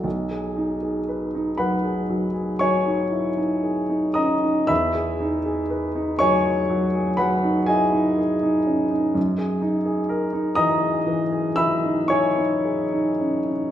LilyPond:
\new Staff \with { instrumentName = "Grand piano" } { \time 9/8 \key b \major \tempo 4. = 40 << { r4. <b' fis'' b''>4 <cis'' gis'' cis'''>4. <dis'' ais'' dis'''>8 | <e'' b'' e'''>4. <cis'' gis'' cis'''>4 <b' fis'' b''>8 <gis' dis'' gis''>4. | r4. <dis'' ais'' dis'''>4 <e'' b'' e'''>8 <cis'' gis'' cis'''>4. | } \\ { b,,16 gis'16 dis'16 gis'16 b'16 dis'16 fis16 gis'16 fis16 gis'16 fis16 dis'16 e'16 dis'16 gis'16 dis'16 cis'16 dis'16 | e,16 gis'16 dis'16 gis'16 b'16 dis'16 fis16 gis'16 fis16 gis'16 fis16 dis'16 e'16 dis'16 gis'16 dis'16 cis'16 dis'16 | fis,16 gis'16 dis'16 gis'16 ais'16 dis'16 e16 gis'16 e16 gis'16 e16 dis'16 e'16 dis'16 gis'16 dis'16 cis'16 dis'16 | } >> }